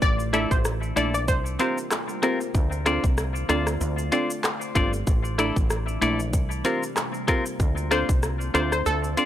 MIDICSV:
0, 0, Header, 1, 8, 480
1, 0, Start_track
1, 0, Key_signature, -1, "minor"
1, 0, Tempo, 631579
1, 15, Time_signature, 4, 2, 24, 8
1, 7033, End_track
2, 0, Start_track
2, 0, Title_t, "Synth pluck"
2, 0, Program_c, 0, 84
2, 16, Note_on_c, 0, 74, 109
2, 133, Note_off_c, 0, 74, 0
2, 256, Note_on_c, 0, 76, 80
2, 373, Note_off_c, 0, 76, 0
2, 389, Note_on_c, 0, 72, 78
2, 482, Note_off_c, 0, 72, 0
2, 734, Note_on_c, 0, 74, 77
2, 852, Note_off_c, 0, 74, 0
2, 869, Note_on_c, 0, 74, 74
2, 961, Note_off_c, 0, 74, 0
2, 975, Note_on_c, 0, 72, 91
2, 1092, Note_off_c, 0, 72, 0
2, 1216, Note_on_c, 0, 72, 78
2, 1333, Note_off_c, 0, 72, 0
2, 6015, Note_on_c, 0, 72, 86
2, 6132, Note_off_c, 0, 72, 0
2, 6494, Note_on_c, 0, 72, 77
2, 6612, Note_off_c, 0, 72, 0
2, 6631, Note_on_c, 0, 72, 75
2, 6722, Note_off_c, 0, 72, 0
2, 6734, Note_on_c, 0, 69, 105
2, 7033, Note_off_c, 0, 69, 0
2, 7033, End_track
3, 0, Start_track
3, 0, Title_t, "Clean electric guitar"
3, 0, Program_c, 1, 27
3, 251, Note_on_c, 1, 64, 85
3, 257, Note_on_c, 1, 69, 94
3, 261, Note_on_c, 1, 74, 92
3, 387, Note_off_c, 1, 64, 0
3, 389, Note_off_c, 1, 69, 0
3, 391, Note_off_c, 1, 74, 0
3, 732, Note_on_c, 1, 64, 91
3, 737, Note_on_c, 1, 69, 88
3, 741, Note_on_c, 1, 74, 97
3, 867, Note_off_c, 1, 64, 0
3, 869, Note_off_c, 1, 69, 0
3, 871, Note_off_c, 1, 74, 0
3, 1212, Note_on_c, 1, 60, 81
3, 1217, Note_on_c, 1, 65, 80
3, 1221, Note_on_c, 1, 70, 92
3, 1347, Note_off_c, 1, 60, 0
3, 1349, Note_off_c, 1, 65, 0
3, 1351, Note_off_c, 1, 70, 0
3, 1692, Note_on_c, 1, 60, 89
3, 1697, Note_on_c, 1, 65, 90
3, 1701, Note_on_c, 1, 70, 100
3, 1818, Note_off_c, 1, 70, 0
3, 1825, Note_off_c, 1, 65, 0
3, 1827, Note_off_c, 1, 60, 0
3, 2172, Note_on_c, 1, 65, 86
3, 2177, Note_on_c, 1, 72, 99
3, 2181, Note_on_c, 1, 74, 100
3, 2307, Note_off_c, 1, 65, 0
3, 2309, Note_off_c, 1, 72, 0
3, 2311, Note_off_c, 1, 74, 0
3, 2652, Note_on_c, 1, 65, 86
3, 2657, Note_on_c, 1, 72, 83
3, 2661, Note_on_c, 1, 74, 98
3, 2787, Note_off_c, 1, 65, 0
3, 2790, Note_off_c, 1, 72, 0
3, 2792, Note_off_c, 1, 74, 0
3, 3131, Note_on_c, 1, 65, 86
3, 3137, Note_on_c, 1, 72, 83
3, 3141, Note_on_c, 1, 74, 94
3, 3267, Note_off_c, 1, 65, 0
3, 3269, Note_off_c, 1, 72, 0
3, 3271, Note_off_c, 1, 74, 0
3, 3612, Note_on_c, 1, 65, 98
3, 3617, Note_on_c, 1, 72, 99
3, 3621, Note_on_c, 1, 74, 103
3, 3738, Note_off_c, 1, 74, 0
3, 3745, Note_off_c, 1, 72, 0
3, 3747, Note_off_c, 1, 65, 0
3, 4092, Note_on_c, 1, 64, 97
3, 4097, Note_on_c, 1, 69, 89
3, 4102, Note_on_c, 1, 74, 99
3, 4227, Note_off_c, 1, 64, 0
3, 4230, Note_off_c, 1, 69, 0
3, 4232, Note_off_c, 1, 74, 0
3, 4572, Note_on_c, 1, 64, 93
3, 4577, Note_on_c, 1, 69, 100
3, 4581, Note_on_c, 1, 74, 101
3, 4707, Note_off_c, 1, 64, 0
3, 4709, Note_off_c, 1, 69, 0
3, 4711, Note_off_c, 1, 74, 0
3, 5052, Note_on_c, 1, 60, 91
3, 5057, Note_on_c, 1, 65, 95
3, 5061, Note_on_c, 1, 70, 100
3, 5187, Note_off_c, 1, 60, 0
3, 5189, Note_off_c, 1, 65, 0
3, 5192, Note_off_c, 1, 70, 0
3, 5532, Note_on_c, 1, 60, 85
3, 5537, Note_on_c, 1, 65, 98
3, 5541, Note_on_c, 1, 70, 103
3, 5658, Note_off_c, 1, 70, 0
3, 5664, Note_off_c, 1, 65, 0
3, 5667, Note_off_c, 1, 60, 0
3, 6011, Note_on_c, 1, 65, 93
3, 6016, Note_on_c, 1, 72, 103
3, 6020, Note_on_c, 1, 74, 94
3, 6146, Note_off_c, 1, 65, 0
3, 6149, Note_off_c, 1, 72, 0
3, 6151, Note_off_c, 1, 74, 0
3, 6491, Note_on_c, 1, 65, 89
3, 6496, Note_on_c, 1, 72, 86
3, 6501, Note_on_c, 1, 74, 100
3, 6627, Note_off_c, 1, 65, 0
3, 6629, Note_off_c, 1, 72, 0
3, 6631, Note_off_c, 1, 74, 0
3, 6972, Note_on_c, 1, 65, 84
3, 6977, Note_on_c, 1, 72, 92
3, 6981, Note_on_c, 1, 74, 95
3, 7033, Note_off_c, 1, 65, 0
3, 7033, Note_off_c, 1, 72, 0
3, 7033, Note_off_c, 1, 74, 0
3, 7033, End_track
4, 0, Start_track
4, 0, Title_t, "Synth pluck"
4, 0, Program_c, 2, 84
4, 253, Note_on_c, 2, 57, 75
4, 255, Note_on_c, 2, 62, 72
4, 256, Note_on_c, 2, 64, 68
4, 258, Note_on_c, 2, 69, 67
4, 260, Note_on_c, 2, 74, 84
4, 362, Note_off_c, 2, 57, 0
4, 363, Note_off_c, 2, 62, 0
4, 363, Note_off_c, 2, 64, 0
4, 364, Note_off_c, 2, 69, 0
4, 365, Note_off_c, 2, 74, 0
4, 732, Note_on_c, 2, 57, 80
4, 734, Note_on_c, 2, 62, 75
4, 735, Note_on_c, 2, 64, 70
4, 737, Note_on_c, 2, 69, 68
4, 738, Note_on_c, 2, 74, 84
4, 841, Note_off_c, 2, 57, 0
4, 842, Note_off_c, 2, 62, 0
4, 843, Note_off_c, 2, 64, 0
4, 843, Note_off_c, 2, 69, 0
4, 844, Note_off_c, 2, 74, 0
4, 1212, Note_on_c, 2, 60, 75
4, 1214, Note_on_c, 2, 65, 68
4, 1216, Note_on_c, 2, 67, 69
4, 1217, Note_on_c, 2, 70, 66
4, 1219, Note_on_c, 2, 72, 82
4, 1321, Note_off_c, 2, 60, 0
4, 1322, Note_off_c, 2, 65, 0
4, 1323, Note_off_c, 2, 67, 0
4, 1324, Note_off_c, 2, 70, 0
4, 1325, Note_off_c, 2, 72, 0
4, 1693, Note_on_c, 2, 60, 96
4, 1694, Note_on_c, 2, 65, 83
4, 1696, Note_on_c, 2, 67, 84
4, 1698, Note_on_c, 2, 70, 88
4, 1699, Note_on_c, 2, 72, 105
4, 1801, Note_off_c, 2, 60, 0
4, 1802, Note_off_c, 2, 65, 0
4, 1803, Note_off_c, 2, 67, 0
4, 1804, Note_off_c, 2, 70, 0
4, 1805, Note_off_c, 2, 72, 0
4, 2173, Note_on_c, 2, 60, 92
4, 2174, Note_on_c, 2, 62, 81
4, 2176, Note_on_c, 2, 65, 83
4, 2177, Note_on_c, 2, 69, 80
4, 2179, Note_on_c, 2, 72, 94
4, 2281, Note_off_c, 2, 60, 0
4, 2282, Note_off_c, 2, 62, 0
4, 2283, Note_off_c, 2, 65, 0
4, 2284, Note_off_c, 2, 69, 0
4, 2285, Note_off_c, 2, 72, 0
4, 2652, Note_on_c, 2, 60, 91
4, 2654, Note_on_c, 2, 62, 82
4, 2655, Note_on_c, 2, 65, 83
4, 2657, Note_on_c, 2, 69, 85
4, 2659, Note_on_c, 2, 74, 99
4, 2761, Note_off_c, 2, 60, 0
4, 2762, Note_off_c, 2, 62, 0
4, 2763, Note_off_c, 2, 65, 0
4, 2764, Note_off_c, 2, 69, 0
4, 2764, Note_off_c, 2, 74, 0
4, 3132, Note_on_c, 2, 60, 93
4, 3133, Note_on_c, 2, 62, 78
4, 3135, Note_on_c, 2, 65, 79
4, 3137, Note_on_c, 2, 69, 84
4, 3138, Note_on_c, 2, 74, 104
4, 3241, Note_off_c, 2, 60, 0
4, 3242, Note_off_c, 2, 62, 0
4, 3243, Note_off_c, 2, 65, 0
4, 3243, Note_off_c, 2, 69, 0
4, 3244, Note_off_c, 2, 74, 0
4, 3611, Note_on_c, 2, 60, 94
4, 3613, Note_on_c, 2, 62, 88
4, 3615, Note_on_c, 2, 65, 86
4, 3616, Note_on_c, 2, 69, 88
4, 3618, Note_on_c, 2, 74, 102
4, 3721, Note_off_c, 2, 60, 0
4, 3722, Note_off_c, 2, 62, 0
4, 3723, Note_off_c, 2, 65, 0
4, 3723, Note_off_c, 2, 69, 0
4, 3724, Note_off_c, 2, 74, 0
4, 4092, Note_on_c, 2, 57, 87
4, 4094, Note_on_c, 2, 62, 85
4, 4095, Note_on_c, 2, 64, 82
4, 4097, Note_on_c, 2, 69, 84
4, 4098, Note_on_c, 2, 74, 94
4, 4201, Note_off_c, 2, 57, 0
4, 4202, Note_off_c, 2, 62, 0
4, 4203, Note_off_c, 2, 64, 0
4, 4203, Note_off_c, 2, 69, 0
4, 4204, Note_off_c, 2, 74, 0
4, 4572, Note_on_c, 2, 57, 91
4, 4573, Note_on_c, 2, 62, 85
4, 4574, Note_on_c, 2, 64, 86
4, 4576, Note_on_c, 2, 69, 85
4, 4578, Note_on_c, 2, 76, 106
4, 4681, Note_off_c, 2, 57, 0
4, 4682, Note_off_c, 2, 62, 0
4, 4682, Note_off_c, 2, 64, 0
4, 4683, Note_off_c, 2, 69, 0
4, 4684, Note_off_c, 2, 76, 0
4, 5052, Note_on_c, 2, 60, 91
4, 5053, Note_on_c, 2, 65, 84
4, 5055, Note_on_c, 2, 67, 82
4, 5057, Note_on_c, 2, 70, 78
4, 5058, Note_on_c, 2, 72, 100
4, 5161, Note_off_c, 2, 60, 0
4, 5162, Note_off_c, 2, 65, 0
4, 5162, Note_off_c, 2, 67, 0
4, 5163, Note_off_c, 2, 70, 0
4, 5164, Note_off_c, 2, 72, 0
4, 5531, Note_on_c, 2, 60, 96
4, 5533, Note_on_c, 2, 65, 92
4, 5534, Note_on_c, 2, 67, 89
4, 5536, Note_on_c, 2, 70, 90
4, 5538, Note_on_c, 2, 72, 103
4, 5641, Note_off_c, 2, 60, 0
4, 5641, Note_off_c, 2, 65, 0
4, 5642, Note_off_c, 2, 67, 0
4, 5643, Note_off_c, 2, 70, 0
4, 5644, Note_off_c, 2, 72, 0
4, 6011, Note_on_c, 2, 60, 73
4, 6013, Note_on_c, 2, 62, 68
4, 6015, Note_on_c, 2, 65, 69
4, 6016, Note_on_c, 2, 69, 68
4, 6018, Note_on_c, 2, 72, 82
4, 6121, Note_off_c, 2, 60, 0
4, 6121, Note_off_c, 2, 62, 0
4, 6122, Note_off_c, 2, 65, 0
4, 6123, Note_off_c, 2, 69, 0
4, 6124, Note_off_c, 2, 72, 0
4, 6491, Note_on_c, 2, 60, 77
4, 6492, Note_on_c, 2, 62, 74
4, 6494, Note_on_c, 2, 65, 70
4, 6496, Note_on_c, 2, 69, 70
4, 6497, Note_on_c, 2, 72, 88
4, 6601, Note_off_c, 2, 60, 0
4, 6601, Note_off_c, 2, 62, 0
4, 6602, Note_off_c, 2, 65, 0
4, 6603, Note_off_c, 2, 69, 0
4, 6604, Note_off_c, 2, 72, 0
4, 6972, Note_on_c, 2, 60, 76
4, 6973, Note_on_c, 2, 62, 68
4, 6975, Note_on_c, 2, 65, 71
4, 6976, Note_on_c, 2, 69, 67
4, 6978, Note_on_c, 2, 74, 83
4, 7033, Note_off_c, 2, 60, 0
4, 7033, Note_off_c, 2, 62, 0
4, 7033, Note_off_c, 2, 65, 0
4, 7033, Note_off_c, 2, 69, 0
4, 7033, Note_off_c, 2, 74, 0
4, 7033, End_track
5, 0, Start_track
5, 0, Title_t, "Ambient pad"
5, 0, Program_c, 3, 92
5, 0, Note_on_c, 3, 57, 78
5, 14, Note_on_c, 3, 52, 81
5, 14, Note_on_c, 3, 62, 89
5, 946, Note_off_c, 3, 57, 0
5, 965, Note_off_c, 3, 52, 0
5, 965, Note_off_c, 3, 62, 0
5, 974, Note_on_c, 3, 55, 75
5, 975, Note_on_c, 3, 48, 85
5, 975, Note_on_c, 3, 58, 75
5, 975, Note_on_c, 3, 65, 93
5, 1925, Note_off_c, 3, 55, 0
5, 1925, Note_off_c, 3, 58, 0
5, 1926, Note_off_c, 3, 48, 0
5, 1934, Note_on_c, 3, 57, 74
5, 1935, Note_on_c, 3, 50, 85
5, 1935, Note_on_c, 3, 60, 77
5, 3826, Note_off_c, 3, 65, 0
5, 3836, Note_off_c, 3, 50, 0
5, 3836, Note_off_c, 3, 60, 0
5, 3855, Note_on_c, 3, 52, 82
5, 3855, Note_on_c, 3, 62, 85
5, 4786, Note_off_c, 3, 57, 0
5, 4805, Note_off_c, 3, 62, 0
5, 4806, Note_off_c, 3, 52, 0
5, 4815, Note_on_c, 3, 48, 83
5, 4815, Note_on_c, 3, 55, 74
5, 4815, Note_on_c, 3, 58, 74
5, 4816, Note_on_c, 3, 65, 88
5, 5765, Note_off_c, 3, 55, 0
5, 5766, Note_off_c, 3, 48, 0
5, 5766, Note_off_c, 3, 58, 0
5, 5774, Note_on_c, 3, 50, 82
5, 5775, Note_on_c, 3, 57, 78
5, 5775, Note_on_c, 3, 60, 77
5, 7033, Note_off_c, 3, 50, 0
5, 7033, Note_off_c, 3, 57, 0
5, 7033, Note_off_c, 3, 60, 0
5, 7033, Note_off_c, 3, 65, 0
5, 7033, End_track
6, 0, Start_track
6, 0, Title_t, "Fretless electric bass"
6, 0, Program_c, 4, 35
6, 15, Note_on_c, 4, 33, 110
6, 344, Note_off_c, 4, 33, 0
6, 388, Note_on_c, 4, 33, 92
6, 693, Note_off_c, 4, 33, 0
6, 734, Note_on_c, 4, 34, 91
6, 975, Note_off_c, 4, 34, 0
6, 975, Note_on_c, 4, 36, 106
6, 1186, Note_off_c, 4, 36, 0
6, 1935, Note_on_c, 4, 38, 110
6, 2264, Note_off_c, 4, 38, 0
6, 2309, Note_on_c, 4, 36, 83
6, 2613, Note_off_c, 4, 36, 0
6, 2655, Note_on_c, 4, 38, 94
6, 2866, Note_off_c, 4, 38, 0
6, 2895, Note_on_c, 4, 38, 110
6, 3106, Note_off_c, 4, 38, 0
6, 3613, Note_on_c, 4, 31, 99
6, 3825, Note_off_c, 4, 31, 0
6, 3854, Note_on_c, 4, 33, 111
6, 4184, Note_off_c, 4, 33, 0
6, 4229, Note_on_c, 4, 33, 90
6, 4533, Note_off_c, 4, 33, 0
6, 4574, Note_on_c, 4, 34, 93
6, 4814, Note_off_c, 4, 34, 0
6, 4814, Note_on_c, 4, 36, 106
6, 5026, Note_off_c, 4, 36, 0
6, 5774, Note_on_c, 4, 38, 110
6, 6104, Note_off_c, 4, 38, 0
6, 6149, Note_on_c, 4, 36, 87
6, 6453, Note_off_c, 4, 36, 0
6, 6495, Note_on_c, 4, 38, 94
6, 6706, Note_off_c, 4, 38, 0
6, 6735, Note_on_c, 4, 38, 105
6, 6946, Note_off_c, 4, 38, 0
6, 7033, End_track
7, 0, Start_track
7, 0, Title_t, "Muted clean electric guitar strokes"
7, 1827, Note_on_c, 9, 29, 54
7, 1903, Note_off_c, 9, 29, 0
7, 5667, Note_on_c, 9, 29, 59
7, 5743, Note_off_c, 9, 29, 0
7, 7033, End_track
8, 0, Start_track
8, 0, Title_t, "Drums"
8, 15, Note_on_c, 9, 36, 122
8, 16, Note_on_c, 9, 82, 67
8, 91, Note_off_c, 9, 36, 0
8, 92, Note_off_c, 9, 82, 0
8, 149, Note_on_c, 9, 82, 60
8, 225, Note_off_c, 9, 82, 0
8, 254, Note_on_c, 9, 37, 96
8, 256, Note_on_c, 9, 42, 81
8, 256, Note_on_c, 9, 82, 57
8, 330, Note_off_c, 9, 37, 0
8, 332, Note_off_c, 9, 42, 0
8, 332, Note_off_c, 9, 82, 0
8, 389, Note_on_c, 9, 36, 97
8, 391, Note_on_c, 9, 82, 68
8, 465, Note_off_c, 9, 36, 0
8, 467, Note_off_c, 9, 82, 0
8, 493, Note_on_c, 9, 82, 74
8, 495, Note_on_c, 9, 37, 97
8, 569, Note_off_c, 9, 82, 0
8, 571, Note_off_c, 9, 37, 0
8, 630, Note_on_c, 9, 82, 48
8, 706, Note_off_c, 9, 82, 0
8, 736, Note_on_c, 9, 42, 74
8, 736, Note_on_c, 9, 82, 58
8, 812, Note_off_c, 9, 42, 0
8, 812, Note_off_c, 9, 82, 0
8, 869, Note_on_c, 9, 82, 84
8, 945, Note_off_c, 9, 82, 0
8, 975, Note_on_c, 9, 36, 104
8, 975, Note_on_c, 9, 82, 80
8, 1051, Note_off_c, 9, 36, 0
8, 1051, Note_off_c, 9, 82, 0
8, 1110, Note_on_c, 9, 82, 59
8, 1186, Note_off_c, 9, 82, 0
8, 1213, Note_on_c, 9, 42, 74
8, 1213, Note_on_c, 9, 82, 53
8, 1289, Note_off_c, 9, 42, 0
8, 1289, Note_off_c, 9, 82, 0
8, 1351, Note_on_c, 9, 82, 78
8, 1427, Note_off_c, 9, 82, 0
8, 1454, Note_on_c, 9, 82, 75
8, 1455, Note_on_c, 9, 37, 92
8, 1455, Note_on_c, 9, 39, 98
8, 1530, Note_off_c, 9, 82, 0
8, 1531, Note_off_c, 9, 37, 0
8, 1531, Note_off_c, 9, 39, 0
8, 1588, Note_on_c, 9, 82, 48
8, 1664, Note_off_c, 9, 82, 0
8, 1694, Note_on_c, 9, 37, 94
8, 1694, Note_on_c, 9, 42, 73
8, 1694, Note_on_c, 9, 82, 52
8, 1770, Note_off_c, 9, 37, 0
8, 1770, Note_off_c, 9, 42, 0
8, 1770, Note_off_c, 9, 82, 0
8, 1829, Note_on_c, 9, 82, 70
8, 1905, Note_off_c, 9, 82, 0
8, 1935, Note_on_c, 9, 36, 118
8, 1935, Note_on_c, 9, 82, 67
8, 2011, Note_off_c, 9, 36, 0
8, 2011, Note_off_c, 9, 82, 0
8, 2068, Note_on_c, 9, 82, 55
8, 2144, Note_off_c, 9, 82, 0
8, 2173, Note_on_c, 9, 37, 98
8, 2175, Note_on_c, 9, 42, 79
8, 2175, Note_on_c, 9, 82, 57
8, 2249, Note_off_c, 9, 37, 0
8, 2251, Note_off_c, 9, 42, 0
8, 2251, Note_off_c, 9, 82, 0
8, 2309, Note_on_c, 9, 36, 99
8, 2311, Note_on_c, 9, 82, 66
8, 2385, Note_off_c, 9, 36, 0
8, 2387, Note_off_c, 9, 82, 0
8, 2413, Note_on_c, 9, 82, 77
8, 2415, Note_on_c, 9, 37, 95
8, 2489, Note_off_c, 9, 82, 0
8, 2491, Note_off_c, 9, 37, 0
8, 2550, Note_on_c, 9, 82, 50
8, 2626, Note_off_c, 9, 82, 0
8, 2654, Note_on_c, 9, 37, 94
8, 2656, Note_on_c, 9, 42, 76
8, 2656, Note_on_c, 9, 82, 55
8, 2730, Note_off_c, 9, 37, 0
8, 2732, Note_off_c, 9, 42, 0
8, 2732, Note_off_c, 9, 82, 0
8, 2788, Note_on_c, 9, 37, 96
8, 2789, Note_on_c, 9, 82, 82
8, 2864, Note_off_c, 9, 37, 0
8, 2865, Note_off_c, 9, 82, 0
8, 2895, Note_on_c, 9, 82, 82
8, 2971, Note_off_c, 9, 82, 0
8, 3030, Note_on_c, 9, 82, 57
8, 3106, Note_off_c, 9, 82, 0
8, 3132, Note_on_c, 9, 42, 73
8, 3132, Note_on_c, 9, 82, 53
8, 3208, Note_off_c, 9, 42, 0
8, 3208, Note_off_c, 9, 82, 0
8, 3271, Note_on_c, 9, 82, 82
8, 3347, Note_off_c, 9, 82, 0
8, 3374, Note_on_c, 9, 82, 76
8, 3375, Note_on_c, 9, 37, 96
8, 3375, Note_on_c, 9, 39, 94
8, 3450, Note_off_c, 9, 82, 0
8, 3451, Note_off_c, 9, 37, 0
8, 3451, Note_off_c, 9, 39, 0
8, 3508, Note_on_c, 9, 82, 50
8, 3584, Note_off_c, 9, 82, 0
8, 3613, Note_on_c, 9, 36, 92
8, 3614, Note_on_c, 9, 42, 76
8, 3614, Note_on_c, 9, 82, 56
8, 3689, Note_off_c, 9, 36, 0
8, 3690, Note_off_c, 9, 42, 0
8, 3690, Note_off_c, 9, 82, 0
8, 3749, Note_on_c, 9, 82, 74
8, 3825, Note_off_c, 9, 82, 0
8, 3855, Note_on_c, 9, 36, 122
8, 3855, Note_on_c, 9, 82, 68
8, 3931, Note_off_c, 9, 36, 0
8, 3931, Note_off_c, 9, 82, 0
8, 3988, Note_on_c, 9, 82, 56
8, 4064, Note_off_c, 9, 82, 0
8, 4093, Note_on_c, 9, 37, 99
8, 4095, Note_on_c, 9, 42, 81
8, 4095, Note_on_c, 9, 82, 57
8, 4169, Note_off_c, 9, 37, 0
8, 4171, Note_off_c, 9, 42, 0
8, 4171, Note_off_c, 9, 82, 0
8, 4229, Note_on_c, 9, 36, 92
8, 4231, Note_on_c, 9, 82, 65
8, 4305, Note_off_c, 9, 36, 0
8, 4307, Note_off_c, 9, 82, 0
8, 4333, Note_on_c, 9, 82, 77
8, 4335, Note_on_c, 9, 37, 93
8, 4409, Note_off_c, 9, 82, 0
8, 4411, Note_off_c, 9, 37, 0
8, 4471, Note_on_c, 9, 82, 49
8, 4547, Note_off_c, 9, 82, 0
8, 4576, Note_on_c, 9, 42, 78
8, 4576, Note_on_c, 9, 82, 54
8, 4652, Note_off_c, 9, 42, 0
8, 4652, Note_off_c, 9, 82, 0
8, 4709, Note_on_c, 9, 82, 81
8, 4785, Note_off_c, 9, 82, 0
8, 4814, Note_on_c, 9, 36, 102
8, 4814, Note_on_c, 9, 82, 79
8, 4890, Note_off_c, 9, 36, 0
8, 4890, Note_off_c, 9, 82, 0
8, 4949, Note_on_c, 9, 82, 55
8, 5025, Note_off_c, 9, 82, 0
8, 5052, Note_on_c, 9, 42, 75
8, 5052, Note_on_c, 9, 82, 52
8, 5128, Note_off_c, 9, 42, 0
8, 5128, Note_off_c, 9, 82, 0
8, 5191, Note_on_c, 9, 82, 81
8, 5267, Note_off_c, 9, 82, 0
8, 5294, Note_on_c, 9, 82, 72
8, 5295, Note_on_c, 9, 37, 95
8, 5295, Note_on_c, 9, 39, 94
8, 5370, Note_off_c, 9, 82, 0
8, 5371, Note_off_c, 9, 37, 0
8, 5371, Note_off_c, 9, 39, 0
8, 5428, Note_on_c, 9, 82, 49
8, 5504, Note_off_c, 9, 82, 0
8, 5533, Note_on_c, 9, 36, 91
8, 5534, Note_on_c, 9, 37, 91
8, 5534, Note_on_c, 9, 42, 74
8, 5534, Note_on_c, 9, 82, 55
8, 5609, Note_off_c, 9, 36, 0
8, 5610, Note_off_c, 9, 37, 0
8, 5610, Note_off_c, 9, 42, 0
8, 5610, Note_off_c, 9, 82, 0
8, 5669, Note_on_c, 9, 82, 73
8, 5745, Note_off_c, 9, 82, 0
8, 5774, Note_on_c, 9, 36, 121
8, 5775, Note_on_c, 9, 82, 64
8, 5850, Note_off_c, 9, 36, 0
8, 5851, Note_off_c, 9, 82, 0
8, 5908, Note_on_c, 9, 82, 58
8, 5984, Note_off_c, 9, 82, 0
8, 6014, Note_on_c, 9, 37, 98
8, 6016, Note_on_c, 9, 42, 85
8, 6016, Note_on_c, 9, 82, 58
8, 6090, Note_off_c, 9, 37, 0
8, 6092, Note_off_c, 9, 42, 0
8, 6092, Note_off_c, 9, 82, 0
8, 6149, Note_on_c, 9, 36, 99
8, 6151, Note_on_c, 9, 82, 64
8, 6225, Note_off_c, 9, 36, 0
8, 6227, Note_off_c, 9, 82, 0
8, 6253, Note_on_c, 9, 82, 79
8, 6255, Note_on_c, 9, 37, 93
8, 6329, Note_off_c, 9, 82, 0
8, 6331, Note_off_c, 9, 37, 0
8, 6391, Note_on_c, 9, 82, 50
8, 6467, Note_off_c, 9, 82, 0
8, 6494, Note_on_c, 9, 37, 93
8, 6496, Note_on_c, 9, 42, 76
8, 6496, Note_on_c, 9, 82, 54
8, 6570, Note_off_c, 9, 37, 0
8, 6572, Note_off_c, 9, 42, 0
8, 6572, Note_off_c, 9, 82, 0
8, 6629, Note_on_c, 9, 37, 94
8, 6630, Note_on_c, 9, 82, 80
8, 6705, Note_off_c, 9, 37, 0
8, 6706, Note_off_c, 9, 82, 0
8, 6735, Note_on_c, 9, 82, 75
8, 6811, Note_off_c, 9, 82, 0
8, 6870, Note_on_c, 9, 82, 56
8, 6946, Note_off_c, 9, 82, 0
8, 6973, Note_on_c, 9, 42, 75
8, 6973, Note_on_c, 9, 82, 50
8, 7033, Note_off_c, 9, 42, 0
8, 7033, Note_off_c, 9, 82, 0
8, 7033, End_track
0, 0, End_of_file